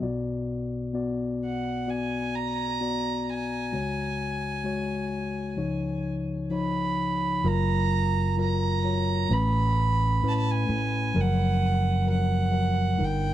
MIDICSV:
0, 0, Header, 1, 4, 480
1, 0, Start_track
1, 0, Tempo, 925926
1, 20, Time_signature, 4, 2, 24, 8
1, 6914, End_track
2, 0, Start_track
2, 0, Title_t, "Violin"
2, 0, Program_c, 0, 40
2, 752, Note_on_c, 0, 78, 67
2, 983, Note_on_c, 0, 80, 77
2, 991, Note_off_c, 0, 78, 0
2, 1224, Note_on_c, 0, 82, 90
2, 1232, Note_off_c, 0, 80, 0
2, 1707, Note_on_c, 0, 80, 78
2, 1714, Note_off_c, 0, 82, 0
2, 3144, Note_off_c, 0, 80, 0
2, 3391, Note_on_c, 0, 83, 81
2, 3877, Note_on_c, 0, 82, 96
2, 3885, Note_off_c, 0, 83, 0
2, 4352, Note_off_c, 0, 82, 0
2, 4362, Note_on_c, 0, 82, 88
2, 4840, Note_on_c, 0, 83, 95
2, 4848, Note_off_c, 0, 82, 0
2, 5330, Note_on_c, 0, 81, 77
2, 5338, Note_off_c, 0, 83, 0
2, 5345, Note_on_c, 0, 83, 67
2, 5353, Note_off_c, 0, 81, 0
2, 5384, Note_on_c, 0, 81, 83
2, 5392, Note_off_c, 0, 83, 0
2, 5445, Note_on_c, 0, 80, 83
2, 5453, Note_off_c, 0, 81, 0
2, 5810, Note_on_c, 0, 78, 86
2, 5817, Note_off_c, 0, 80, 0
2, 6273, Note_off_c, 0, 78, 0
2, 6279, Note_on_c, 0, 78, 80
2, 6764, Note_on_c, 0, 79, 88
2, 6772, Note_off_c, 0, 78, 0
2, 6914, Note_off_c, 0, 79, 0
2, 6914, End_track
3, 0, Start_track
3, 0, Title_t, "Tine electric piano"
3, 0, Program_c, 1, 4
3, 0, Control_c, 1, 64, 127
3, 2, Note_on_c, 1, 59, 67
3, 9, Note_on_c, 1, 35, 58
3, 9, Note_on_c, 1, 66, 64
3, 10, Note_on_c, 1, 47, 61
3, 15, Note_on_c, 1, 74, 72
3, 27, Control_c, 1, 64, 0
3, 103, Control_c, 1, 64, 127
3, 419, Note_off_c, 1, 59, 0
3, 423, Note_off_c, 1, 66, 0
3, 425, Note_off_c, 1, 74, 0
3, 484, Note_on_c, 1, 59, 67
3, 490, Note_on_c, 1, 66, 60
3, 492, Note_on_c, 1, 74, 74
3, 900, Note_off_c, 1, 59, 0
3, 902, Note_off_c, 1, 66, 0
3, 904, Note_off_c, 1, 74, 0
3, 971, Note_on_c, 1, 59, 53
3, 973, Note_on_c, 1, 66, 49
3, 976, Note_on_c, 1, 74, 57
3, 1382, Note_off_c, 1, 59, 0
3, 1383, Note_off_c, 1, 66, 0
3, 1384, Note_off_c, 1, 74, 0
3, 1456, Note_on_c, 1, 66, 52
3, 1457, Note_on_c, 1, 59, 59
3, 1463, Note_on_c, 1, 74, 62
3, 1864, Note_off_c, 1, 59, 0
3, 1864, Note_off_c, 1, 66, 0
3, 1868, Note_off_c, 1, 74, 0
3, 1909, Note_off_c, 1, 35, 0
3, 1910, Note_off_c, 1, 47, 0
3, 1930, Note_on_c, 1, 56, 59
3, 1933, Note_on_c, 1, 49, 50
3, 1933, Note_on_c, 1, 66, 52
3, 1935, Note_on_c, 1, 37, 49
3, 1942, Control_c, 1, 64, 0
3, 1942, Note_on_c, 1, 73, 62
3, 2035, Control_c, 1, 64, 127
3, 2341, Note_off_c, 1, 56, 0
3, 2343, Note_off_c, 1, 66, 0
3, 2347, Note_off_c, 1, 73, 0
3, 2404, Note_on_c, 1, 56, 64
3, 2410, Note_on_c, 1, 66, 60
3, 2416, Note_on_c, 1, 73, 68
3, 2820, Note_off_c, 1, 56, 0
3, 2823, Note_off_c, 1, 66, 0
3, 2825, Note_off_c, 1, 73, 0
3, 2875, Note_off_c, 1, 49, 0
3, 2876, Note_off_c, 1, 37, 0
3, 2886, Note_on_c, 1, 53, 65
3, 2891, Note_on_c, 1, 63, 58
3, 2892, Note_on_c, 1, 37, 55
3, 2892, Note_on_c, 1, 73, 69
3, 2894, Note_on_c, 1, 49, 55
3, 2904, Control_c, 1, 64, 0
3, 2992, Control_c, 1, 64, 127
3, 3302, Note_off_c, 1, 53, 0
3, 3305, Note_off_c, 1, 63, 0
3, 3305, Note_off_c, 1, 73, 0
3, 3368, Note_on_c, 1, 53, 66
3, 3375, Note_on_c, 1, 63, 61
3, 3380, Note_on_c, 1, 73, 70
3, 3785, Note_off_c, 1, 53, 0
3, 3788, Note_off_c, 1, 63, 0
3, 3791, Note_off_c, 1, 73, 0
3, 3840, Note_off_c, 1, 37, 0
3, 3840, Note_off_c, 1, 49, 0
3, 3855, Note_on_c, 1, 54, 80
3, 3859, Note_on_c, 1, 65, 75
3, 3860, Note_on_c, 1, 42, 56
3, 3862, Note_on_c, 1, 30, 57
3, 3866, Note_on_c, 1, 70, 90
3, 3870, Control_c, 1, 64, 0
3, 3959, Control_c, 1, 64, 127
3, 4269, Note_off_c, 1, 54, 0
3, 4271, Note_off_c, 1, 65, 0
3, 4274, Note_off_c, 1, 70, 0
3, 4340, Note_on_c, 1, 54, 59
3, 4342, Note_on_c, 1, 65, 57
3, 4349, Note_on_c, 1, 70, 69
3, 4546, Note_off_c, 1, 54, 0
3, 4547, Note_off_c, 1, 65, 0
3, 4551, Note_off_c, 1, 70, 0
3, 4579, Note_on_c, 1, 54, 54
3, 4584, Note_on_c, 1, 65, 51
3, 4588, Note_on_c, 1, 73, 58
3, 4786, Note_off_c, 1, 54, 0
3, 4788, Note_off_c, 1, 65, 0
3, 4790, Note_off_c, 1, 73, 0
3, 4802, Note_off_c, 1, 42, 0
3, 4803, Note_off_c, 1, 30, 0
3, 4818, Note_on_c, 1, 57, 64
3, 4821, Note_on_c, 1, 33, 52
3, 4825, Note_on_c, 1, 45, 51
3, 4825, Note_on_c, 1, 61, 56
3, 4828, Note_on_c, 1, 71, 65
3, 4832, Control_c, 1, 64, 0
3, 4909, Control_c, 1, 64, 127
3, 5229, Note_off_c, 1, 57, 0
3, 5233, Note_off_c, 1, 61, 0
3, 5234, Note_off_c, 1, 71, 0
3, 5303, Note_on_c, 1, 57, 62
3, 5308, Note_on_c, 1, 61, 60
3, 5311, Note_on_c, 1, 71, 71
3, 5711, Note_off_c, 1, 57, 0
3, 5713, Note_off_c, 1, 61, 0
3, 5715, Note_off_c, 1, 71, 0
3, 5760, Note_off_c, 1, 33, 0
3, 5762, Note_off_c, 1, 45, 0
3, 5777, Note_on_c, 1, 53, 74
3, 5778, Note_on_c, 1, 54, 80
3, 5781, Note_on_c, 1, 30, 60
3, 5781, Note_on_c, 1, 42, 55
3, 5785, Note_on_c, 1, 70, 96
3, 5789, Control_c, 1, 64, 0
3, 5878, Control_c, 1, 64, 127
3, 6186, Note_off_c, 1, 53, 0
3, 6186, Note_off_c, 1, 54, 0
3, 6190, Note_off_c, 1, 70, 0
3, 6251, Note_on_c, 1, 54, 63
3, 6257, Note_on_c, 1, 53, 58
3, 6260, Note_on_c, 1, 70, 72
3, 6458, Note_off_c, 1, 54, 0
3, 6462, Note_off_c, 1, 53, 0
3, 6463, Note_off_c, 1, 70, 0
3, 6486, Note_on_c, 1, 54, 58
3, 6490, Note_on_c, 1, 53, 50
3, 6497, Note_on_c, 1, 70, 62
3, 6695, Note_off_c, 1, 54, 0
3, 6697, Note_off_c, 1, 53, 0
3, 6700, Note_off_c, 1, 70, 0
3, 6715, Note_off_c, 1, 30, 0
3, 6715, Note_off_c, 1, 42, 0
3, 6724, Note_on_c, 1, 55, 58
3, 6726, Note_on_c, 1, 31, 56
3, 6729, Note_on_c, 1, 43, 55
3, 6730, Note_on_c, 1, 63, 54
3, 6737, Note_on_c, 1, 70, 69
3, 6743, Control_c, 1, 64, 0
3, 6847, Control_c, 1, 64, 127
3, 6914, Note_off_c, 1, 31, 0
3, 6914, Note_off_c, 1, 43, 0
3, 6914, Note_off_c, 1, 55, 0
3, 6914, Note_off_c, 1, 63, 0
3, 6914, Note_off_c, 1, 70, 0
3, 6914, End_track
4, 0, Start_track
4, 0, Title_t, "Fretless electric bass"
4, 0, Program_c, 2, 35
4, 3858, Note_on_c, 2, 30, 84
4, 4801, Note_off_c, 2, 30, 0
4, 4825, Note_on_c, 2, 33, 91
4, 5283, Note_off_c, 2, 33, 0
4, 5306, Note_on_c, 2, 45, 76
4, 5523, Note_off_c, 2, 45, 0
4, 5542, Note_on_c, 2, 45, 71
4, 5761, Note_off_c, 2, 45, 0
4, 5787, Note_on_c, 2, 30, 83
4, 6718, Note_off_c, 2, 30, 0
4, 6742, Note_on_c, 2, 31, 96
4, 6914, Note_off_c, 2, 31, 0
4, 6914, End_track
0, 0, End_of_file